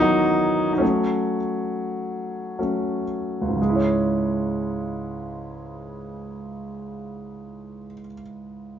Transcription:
Already playing: D#3 E3 F#3 B3 C#4
0.00 F#3 D#4
0.73 D#4
0.78 F#3 A3 C#4
2.59 F#3 A3 C#4
3.41 C#2
3.48 G#2
3.56 C#3
3.61 G#3
3.69 E4
3.76 C#5

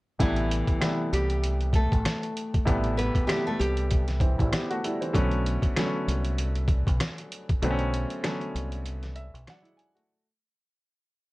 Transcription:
0.19 A1 C3 E3 G3 A3 B3 E4, kick, closed hi-hat
0.36 closed hi-hat
0.51 closed hi-hat
0.67 kick, closed hi-hat
0.80 C3 E3 G3 A3 B3, cross-stick, snare, closed hi-hat
1.13 C2 G3 G4, closed hi-hat
1.30 closed hi-hat
1.44 closed hi-hat
1.61 closed hi-hat
1.73 A3 A4, kick, closed hi-hat
1.92 A1, kick, closed hi-hat
2.05 cross-stick, snare, closed hi-hat
2.23 closed hi-hat
2.37 closed hi-hat
2.54 kick, closed hi-hat
2.65 A1 C3 E3 G3 A3 B3, kick, closed hi-hat
2.84 closed hi-hat
2.97 B3 B4, closed hi-hat
3.15 kick, closed hi-hat
3.27 C3 E3 G3 A3 B3 G4, cross-stick, snare, closed hi-hat
3.47 A3 A4
3.59 C2 G3 G4, closed hi-hat
3.77 closed hi-hat
3.91 kick, closed hi-hat
4.08 snare, closed hi-hat
4.20 E3 C4, kick, closed hi-hat
4.38 A1 G3 E4, kick, closed hi-hat
4.53 B3 G4, cross-stick, snare, closed hi-hat
4.70 A3 F#4, closed hi-hat
4.84 G3 E4, closed hi-hat
5.01 E3 C4, closed hi-hat
5.13 B1 D3 F#3 A3 B3 C#4, kick, closed hi-hat
5.31 closed hi-hat
5.46 closed hi-hat
5.62 kick, closed hi-hat
5.76 D3 F#3 A3 B3 C#4, cross-stick, snare, closed hi-hat
6.08 C2, closed hi-hat
6.25 closed hi-hat
6.38 closed hi-hat
6.55 closed hi-hat
6.68 kick, closed hi-hat
6.87 B1, kick, closed hi-hat
7.00 cross-stick, snare, closed hi-hat
7.18 closed hi-hat
7.32 closed hi-hat
7.49 kick, closed hi-hat
7.62 B1 D3 F#3 A3 B3 C4, closed hi-hat
7.70 C#4
7.79 closed hi-hat
7.94 closed hi-hat
8.10 closed hi-hat
8.23 D3 F#3 A3 B3 C#4, cross-stick, snare, closed hi-hat
8.41 closed hi-hat
8.55 C2, closed hi-hat
8.72 closed hi-hat
8.86 closed hi-hat
9.03 snare, closed hi-hat
9.16 E5, closed hi-hat
9.34 B1, closed hi-hat
9.47 F#3 D4 F#5, cross-stick, snare, closed hi-hat
9.62 G#3 E4, closed hi-hat
9.77 G#5, closed hi-hat
9.95 A3 F#4, closed hi-hat

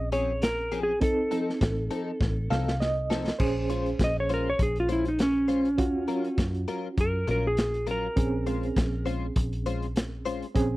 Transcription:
Already playing: A#1 C4 C#4 G#4 D#5
0.12 F3 C4 C#4 G#4 C#5, closed hi-hat
0.42 A#4, snare, closed hi-hat
0.72 F3 C4 C#4 G#4, closed hi-hat
0.83 G#4
1.01 F1 C4 D#4 A4, kick, closed hi-hat
1.31 F3 C4 D#4 A4, closed hi-hat
1.50 snare
1.61 A1, kick, snare, closed hi-hat
1.91 F3 C4 D#4 A4, closed hi-hat
2.21 A1, kick, snare
2.50 C2 F3 C4 D#4 A4 F5, snare
2.68 snare
2.80 D#5, snare
3.10 F3 C4 D#4 A4, snare
3.28 snare
3.39 A#1 C#4 G#4 C5, kick, crash
3.70 G#3 C#4 F4 C5, closed hi-hat
3.86 closed hi-hat
3.99 A#1, kick, snare, closed hi-hat
4.04 D#5
4.20 C#5
4.29 G#3 C#4 F4 C5, closed hi-hat
4.34 A#4
4.50 C#5
4.59 A#1 G#4, kick, closed hi-hat
4.76 closed hi-hat
4.80 F4
4.89 G#3 C#4 E4 F4 C5, closed hi-hat
5.05 D#4, closed hi-hat
5.19 C#4, snare, closed hi-hat
5.48 G#3 C#4 F4 C5, closed hi-hat
5.65 closed hi-hat
5.78 D#2 C#4 F4 F#4, kick, closed hi-hat
6.08 F#3 C#4 F4 A#4, closed hi-hat
6.24 closed hi-hat
6.38 F#2, kick, snare, closed hi-hat
6.54 closed hi-hat
6.68 F#3 C#4 F4 A#4, closed hi-hat
6.97 F#2 A#4, kick, closed hi-hat
7.27 A#1 F#3 C#4 F4 A#4, closed hi-hat
7.47 G#4
7.57 snare, closed hi-hat
7.74 closed hi-hat
7.87 F#3 C#4 F4 A#4, closed hi-hat
7.91 A#4
8.16 A#1 C4 C#4 G#4, kick, closed hi-hat
8.47 G#3 C#4 F4 C5, closed hi-hat
8.63 closed hi-hat
8.76 A#1, kick, snare, closed hi-hat
9.06 G#3 C#4 F4 C5, closed hi-hat
9.36 A#1, kick, closed hi-hat
9.53 closed hi-hat
9.66 G#3 C#4 F4 C5, closed hi-hat
9.82 closed hi-hat
9.96 snare, closed hi-hat
10.25 G#3 C#4 F4 C5, closed hi-hat
10.42 closed hi-hat
10.55 A#1 C4 C#4 G#4, kick, closed hi-hat

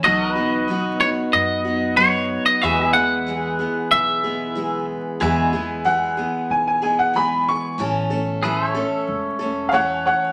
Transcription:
0.03 B1 B2 F#3 B3 D#4 F#4 A4 B4 D#5 F#5
0.31 B4
0.35 B3 D#4 F#4
0.68 F#3 B3 D#4 F#4
1.00 B3 D#4 F#4 C#5
1.33 F#2 D#5
1.64 B3 D#4 F#4
1.97 F#3 B3 D#4 F#4 C#5
2.46 D#5
2.62 E2 B2 E3 G#3 B3 E4 F#4 G#4 B4 D#5 E5
2.85 G#4 E5
2.93 E3 G#3 B3 G#4 F#5
3.27 E3 G#3 B3 G#4
3.59 E3 G#3 B3 G#4
3.91 B1 E5
4.24 E3 G#3 B3 G#4
4.55 E3 G#3 B3 G#4
5.20 E2 B2 E3 G#3 B3 G#4 B4 E5
5.53 E3 G#3 B3 G#4
5.85 E3 G#3 B3 G#4 F#5
6.17 E3 G#3 B3 G#4
6.50 B1 G#5
6.67 G#5
6.82 E3 G#3 B3 G#4 G#5
6.99 F#5
7.13 E3 G#3 B3 G#4 B5
7.48 C#6
7.78 A1 A2 E3 A3 C#4 A4
8.10 A3 C#4 A4
8.43 E3 A3 C#4 G#4 A4 B4 E5
8.63 A4
8.69 C#5
8.75 A3 C#4 A4
9.08 E1
9.39 A3 C#4 A4
9.69 E3 A3 C#5 F5
9.73 C#4 A4 F#5
10.06 C#5 F#5

